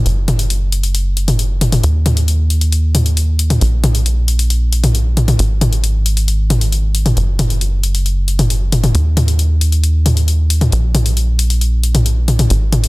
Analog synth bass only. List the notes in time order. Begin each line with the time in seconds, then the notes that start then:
0.06 F#1
1.84 D#2
3.61 A#1
5.39 G#1
7.17 F#1
8.95 D#2
10.72 A#1
12.50 G#1